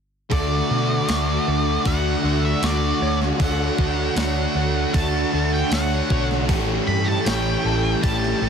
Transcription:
0.30 fingered electric bass D2, overdriven electric guitar D3 A3 D4 F#4, string machine D4 F#4 C#6, clean electric guitar A4, lead electric guitar D5, kick, open hi-hat
0.70 fingered electric bass B2
1.07 fingered electric bass D2, overdriven electric guitar D3 A3 D4 F#4, clean electric guitar C#6, snare, open hi-hat
1.48 fingered electric bass D2, clean electric guitar A4
1.85 fingered electric bass D2, overdriven electric guitar D3 A3 D4 F#4, clean electric guitar F#4, lead electric guitar F#5, kick, open hi-hat
2.23 fingered electric bass D2, overdriven electric guitar A3 D4 F#4, clean electric guitar A4
2.45 lead electric guitar E5
2.61 fingered electric bass D2, overdriven electric guitar D3 A3 D4 F#4, lead electric guitar D5, clean electric guitar C#6, snare, open hi-hat
3.01 fingered electric bass D2, clean electric guitar C#5
3.22 snare
3.38 fingered electric bass D2, overdriven electric guitar D3 A3 D4 F#4, clean electric guitar A4, lead electric guitar F#5, kick, open hi-hat
3.78 fingered electric bass D2, kick
4.16 fingered electric bass D2, overdriven electric guitar D3 A3 D4 F#4, clean electric guitar C#5, snare, open hi-hat
4.55 fingered electric bass D2, clean electric guitar A4
4.94 fingered electric bass D2, overdriven electric guitar D3 A3 D4 F#4, clean electric guitar F#4, lead electric guitar A5, kick, open hi-hat
5.32 fingered electric bass D2, overdriven electric guitar A3 D4 F#4, clean electric guitar A4
5.54 lead electric guitar G5
5.71 fingered electric bass D2, overdriven electric guitar D3 A3 D4 F#4, clean electric guitar C#5, lead electric guitar F#5, snare, open hi-hat
6.10 fingered electric bass B1, clean electric guitar C#5, kick
6.31 snare
6.47 fingered electric bass A1, overdriven electric guitar A2 E3 G3 C#4 G4, distorted electric guitar A3, string machine A4 G5, clean electric guitar A4, kick, open hi-hat
6.87 fingered electric bass G2, lead electric guitar B5
7.05 lead electric guitar A5
7.25 fingered electric bass A1, distorted electric guitar A2 A3, overdriven electric guitar E3 G3 C#4 G4, clean electric guitar C#5, lead electric guitar G5, snare, open hi-hat
7.64 fingered electric bass A1, clean electric guitar A4
8.01 fingered electric bass A1, overdriven electric guitar A2 E3 G3 C#4 G4, distorted electric guitar A3, clean electric guitar G4, lead electric guitar A5, kick, open hi-hat
8.24 snare
8.40 fingered electric bass A1, overdriven electric guitar G3 C#4 G4, distorted electric guitar A3, clean electric guitar A4
8.45 distorted electric guitar E3

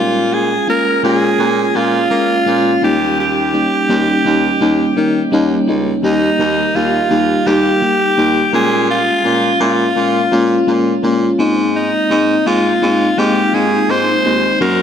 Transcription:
Already playing: baritone saxophone A#2, fm electric piano G#3 A#3 C#4 F4, alto saxophone F4
0.33 alto saxophone G#4
0.67 fm electric piano G#3 A#3 C#4 F4, alto saxophone A#4
1.03 baritone saxophone A#2, fm electric piano G#3 A#3 C#4 F4, alto saxophone G#4
1.39 baritone saxophone A#2, fm electric piano G#3 A#3 C#4 F4
1.75 baritone saxophone A#2, fm electric piano G#3 A#3 C#4 F4, alto saxophone F4
2.10 fm electric piano G#3 A#3 C#4 F4, baritone saxophone A#3
2.46 baritone saxophone A#2, fm electric piano G#3 A#3 C#4 F4
2.82 baritone saxophone D#2, fm electric piano G3 A#3 C#4 D#4, alto saxophone G4
3.20 alto saxophone G4
3.53 fm electric piano G3 A#3 C#4 D#4
3.89 baritone saxophone D#2, fm electric piano G3 A#3 C#4 D#4
4.25 baritone saxophone D#2, fm electric piano G3 A#3 C#4 D#4
4.60 baritone saxophone D#2, fm electric piano G3 A#3 C#4 D#4
4.96 baritone saxophone D#3, fm electric piano G3 A#3 C#4 D#4
5.32 baritone saxophone D#2, fm electric piano G3 A#3 C#4 D#4
5.67 baritone saxophone C#2, fm electric piano G3 A#3 C#4 D#4
6.03 baritone saxophone D#2, fm electric piano G3 A#3 D#4 G4, alto saxophone D#4
6.39 baritone saxophone D#2, fm electric piano G3 A#3 D#4 A#4
6.75 baritone saxophone D#2, fm electric piano G3 A#3 D#4 G4, alto saxophone F4
7.10 baritone saxophone D#2, fm electric piano G3 A#3 D#4 G4
7.46 baritone saxophone D#2, fm electric piano G3 A#3 D#4 G4, alto saxophone G4
7.82 fm electric piano G3 A#3 D#4 G4
8.17 baritone saxophone D#2, fm electric piano G3 A#3 D#4 G4
8.53 baritone saxophone A#2, fm electric piano G#3 A#3 C#4 F4, alto saxophone G#4
8.90 alto saxophone F4
9.24 baritone saxophone A#2, fm electric piano G#3 A#3 C#4 F4
9.60 baritone saxophone A#2, fm electric piano G#3 A#3 C#4 F4, alto saxophone F4
9.96 baritone saxophone A#2, fm electric piano G#3 A#3 C#4 F4
10.32 baritone saxophone A#2, fm electric piano G#3 A#3 C#4 F4
10.67 baritone saxophone A#2, fm electric piano G#3 A#3 C#4 F4
11.03 baritone saxophone A#2, fm electric piano G#3 A#3 C#4 F4
11.39 baritone saxophone G#2, fm electric piano G#3 A#3 C4 D#4
11.76 alto saxophone D#4
12.10 baritone saxophone G#2, fm electric piano G#3 A#3 C4 D#4
12.46 baritone saxophone G#2, fm electric piano G#3 A#3 C4 F4, alto saxophone F4
12.82 baritone saxophone G#2, fm electric piano G#3 A#3 C4 D#4
13.18 baritone saxophone G#2, fm electric piano G#3 A#3 C4 D#4, alto saxophone G4
13.53 baritone saxophone G#2, fm electric piano G#3 A#3 C4 D#4, alto saxophone G#4
13.89 baritone saxophone G#2, fm electric piano G#3 A#3 C4 D#4, alto saxophone C5
14.25 baritone saxophone D#2, fm electric piano G#3 A#3 C4 D#4
14.60 baritone saxophone F#2, fm electric piano F#3 A#3 C#4 F#4, alto saxophone A#4

